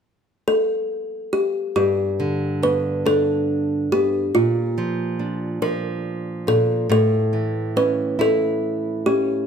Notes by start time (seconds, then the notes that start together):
0.48 A4
1.33 G4
1.76 G2 G4
2.20 D3
2.63 B3 B4
3.06 D4 A4
3.92 B3 G4
4.35 A#2 F4
4.78 F3
5.19 D4
5.62 F3 A#4
6.47 A#2 A4
6.89 A2 A4
7.33 E3
7.76 C#4 B4
8.19 E4 A4
9.06 C#4 G4